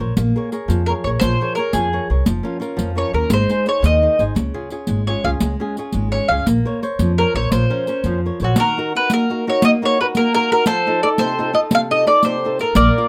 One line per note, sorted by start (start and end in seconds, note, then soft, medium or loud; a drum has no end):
0.00 0.11 A#1 medium
0.00 0.13 A#4 soft
0.00 0.13 C5 soft
0.00 0.14 C#5 soft
0.17 0.29 A#1 medium
0.17 0.52 A#3 soft
0.17 riq soft
0.36 0.51 G#4 soft
0.36 0.51 A#4 soft
0.36 0.52 C#5 soft
0.52 0.81 G#4 soft
0.52 0.81 A#4 soft
0.52 0.81 C#5 soft
0.52 riq soft
0.68 0.92 F2 medium
0.68 1.03 F3 medium
0.68 riq soft
0.86 1.05 G#4 soft
0.86 0.91 A#4 medium
0.86 1.06 A#4 soft
0.86 1.06 C#5 soft
1.04 1.15 A#1 medium
1.04 1.34 G#4 soft
1.04 1.35 A#4 soft
1.04 1.09 C#5 medium
1.04 1.35 C#5 soft
1.20 1.34 A#1 medium
1.20 1.57 F3 soft
1.20 1.54 C5 loud
1.20 riq medium
1.41 1.56 G#4 soft
1.41 1.56 A#4 soft
1.41 1.58 C#5 medium
1.55 1.86 G#4 soft
1.55 1.72 A#4 medium
1.55 1.86 A#4 soft
1.55 1.87 C#5 soft
1.55 riq soft
1.73 1.97 F2 medium
1.73 2.09 F3 medium
1.73 2.10 G#4 medium
1.73 riq soft
1.93 2.09 G#4 soft
1.93 2.09 A#4 soft
1.93 2.10 C#5 soft
2.10 2.21 C2 medium
2.10 2.23 G#4 soft
2.10 2.23 A#4 soft
2.10 2.24 C#5 soft
2.26 2.39 F1 medium
2.26 2.60 F3 soft
2.26 riq medium
2.43 2.59 C#4 soft
2.43 2.60 F4 soft
2.43 2.60 A#4 medium
2.60 2.89 C#4 soft
2.60 2.90 F4 soft
2.60 2.90 A#4 soft
2.60 riq soft
2.77 3.02 F2 medium
2.77 3.12 F3 medium
2.77 riq soft
2.95 3.12 C#4 soft
2.95 3.13 F4 soft
2.95 3.13 A#4 soft
2.95 3.14 C#5 medium
3.13 3.25 D#2 medium
3.13 3.27 C#4 soft
3.13 3.28 F4 soft
3.13 3.32 A#4 medium
3.13 3.28 A#4 soft
3.30 3.42 G#1 medium
3.30 3.65 G#3 medium
3.30 3.66 C5 medium
3.30 riq medium
3.49 3.66 D#4 soft
3.49 3.66 G#4 soft
3.49 3.66 C5 medium
3.49 riq soft
3.66 3.95 D#4 soft
3.66 3.95 G#4 soft
3.66 3.96 C5 soft
3.66 3.83 C#5 medium
3.66 riq soft
3.82 4.06 D#2 medium
3.82 4.18 D#3 medium
3.82 4.22 D#5 medium
3.82 riq soft
4.02 4.18 D#4 soft
4.02 4.18 G#4 soft
4.02 4.18 C5 soft
4.19 4.30 G#1 medium
4.19 4.33 D#4 soft
4.19 4.33 G#4 soft
4.19 4.33 C5 soft
4.19 riq soft
4.35 4.48 C#2 medium
4.35 4.70 C#3 soft
4.35 riq soft
4.54 4.70 C#4 soft
4.54 4.70 F4 soft
4.54 4.71 G#4 medium
4.70 5.00 C#4 soft
4.70 5.00 F4 soft
4.70 5.01 G#4 soft
4.70 riq soft
4.87 5.12 G#1 medium
4.87 5.23 G#3 soft
4.87 riq soft
5.07 5.23 C#4 soft
5.07 5.23 F4 soft
5.07 5.24 G#4 soft
5.07 5.23 C#5 medium
5.24 5.35 C#2 medium
5.24 5.53 C#4 soft
5.24 5.53 F4 soft
5.24 5.54 G#4 soft
5.24 5.30 F5 medium
5.40 5.54 C#2 medium
5.40 5.76 G#3 medium
5.40 riq soft
5.60 5.77 C#4 soft
5.60 5.78 F4 soft
5.60 5.77 G#4 medium
5.77 6.06 C#4 soft
5.77 6.07 F4 soft
5.77 6.06 G#4 soft
5.77 riq soft
5.92 6.17 G#1 medium
5.92 6.29 G#3 medium
5.92 riq soft
6.12 6.30 C#4 soft
6.12 6.30 F4 soft
6.12 6.30 G#4 soft
6.12 6.30 C#5 medium
6.28 6.40 C#2 medium
6.28 6.44 C#4 soft
6.28 6.44 F4 soft
6.28 6.44 G#4 soft
6.28 6.44 F5 medium
6.46 6.58 A#1 medium
6.46 6.82 A#3 medium
6.46 riq soft
6.65 6.81 A#4 medium
6.65 6.82 C5 soft
6.65 6.82 C#5 soft
6.82 7.11 A#4 soft
6.82 7.11 C5 soft
6.82 7.11 C#5 medium
6.82 riq soft
6.99 7.22 F2 medium
6.99 7.34 F3 medium
6.99 riq soft
7.18 7.35 A#4 medium
7.18 7.35 A#4 soft
7.18 7.36 C5 soft
7.18 7.36 C#5 soft
7.34 7.45 A#1 medium
7.34 7.64 A#4 soft
7.34 7.64 C5 soft
7.34 7.51 C#5 medium
7.34 7.65 C#5 soft
7.51 7.64 A#1 medium
7.51 7.86 F3 soft
7.51 8.20 C5 medium
7.51 riq soft
7.70 7.88 C#4 medium
7.70 7.86 A#4 soft
7.70 7.87 C5 soft
7.87 8.17 C#4 soft
7.87 8.16 A#4 soft
7.87 8.16 C5 soft
7.87 riq soft
8.04 8.27 F2 medium
8.04 8.40 F3 medium
8.04 riq soft
8.26 8.40 A#4 soft
8.26 8.41 C5 soft
8.26 8.41 C#5 soft
8.40 8.51 A#1 medium
8.40 8.55 A#4 soft
8.40 8.55 C5 soft
8.40 8.55 C#5 soft
8.40 riq soft
8.44 8.58 F#4 medium
8.56 8.93 D#3 medium
8.56 10.74 F#4 medium
8.56 8.92 A#4 medium
8.56 riq medium
8.77 8.94 D#4 soft
8.77 8.94 F#4 soft
8.77 8.95 A#4 medium
8.95 9.23 D#4 soft
8.95 9.23 F#4 soft
8.95 9.23 A#4 medium
8.95 9.12 B4 medium
9.10 9.45 A#3 medium
9.10 9.45 A#4 medium
9.10 riq medium
9.30 9.46 D#4 soft
9.30 9.46 F#4 soft
9.30 9.47 A#4 soft
9.47 9.75 D#4 soft
9.47 9.75 F#4 soft
9.47 9.75 A#4 medium
9.47 9.64 C#5 medium
9.62 9.98 A#3 medium
9.62 9.70 D#5 medium
9.62 riq medium
9.82 10.00 D#4 medium
9.82 10.00 F#4 medium
9.82 10.00 A#4 medium
9.82 10.00 C#5 medium
10.01 10.28 D#4 soft
10.01 10.28 F#4 soft
10.01 10.29 A#4 soft
10.01 10.06 B4 medium
10.15 10.51 A#3 medium
10.15 10.33 A#4 medium
10.15 riq soft
10.35 10.50 D#4 medium
10.35 10.50 F#4 soft
10.35 10.50 A#4 loud
10.35 10.50 A#4 soft
10.51 10.64 D#4 soft
10.51 10.64 F#4 soft
10.51 10.64 A#4 soft
10.51 10.66 A#4 medium
10.66 11.02 F3 medium
10.66 12.55 A4 medium
10.66 11.03 C5 loud
10.66 riq soft
10.87 11.02 D#4 medium
10.87 11.02 F4 medium
10.87 11.03 A4 medium
11.03 11.31 D#4 soft
11.03 11.31 F4 soft
11.03 11.32 A4 medium
11.03 11.08 D5 medium
11.18 11.54 C3 medium
11.18 11.52 C5 medium
11.18 riq soft
11.39 11.52 D#4 medium
11.39 11.52 F4 soft
11.39 11.52 A4 medium
11.53 11.82 D#4 soft
11.53 11.82 F4 soft
11.53 11.82 A4 soft
11.53 11.60 D#5 medium
11.71 12.05 C3 medium
11.71 riq medium
11.75 11.80 F5 loud
11.91 12.05 D#4 soft
11.91 12.06 F4 soft
11.91 12.07 A4 medium
11.91 12.06 D#5 medium
12.06 12.35 D#4 medium
12.06 12.36 F4 soft
12.06 12.36 A4 soft
12.06 12.24 D5 medium
12.06 riq soft
12.23 12.59 C3 soft
12.23 12.57 C5 medium
12.23 riq soft
12.45 12.60 D#4 soft
12.45 12.61 F4 soft
12.45 12.61 A4 soft
12.59 12.74 D#4 soft
12.59 12.75 F4 soft
12.59 12.75 A4 soft
12.59 12.76 A#4 medium
12.59 riq soft
12.75 12.88 A#1 medium
12.75 13.08 A#3 medium
12.75 13.08 A#4 medium
12.75 13.08 D5 medium
12.75 riq medium
12.98 13.08 F4 soft
12.98 13.08 A#4 soft
12.98 13.08 D5 medium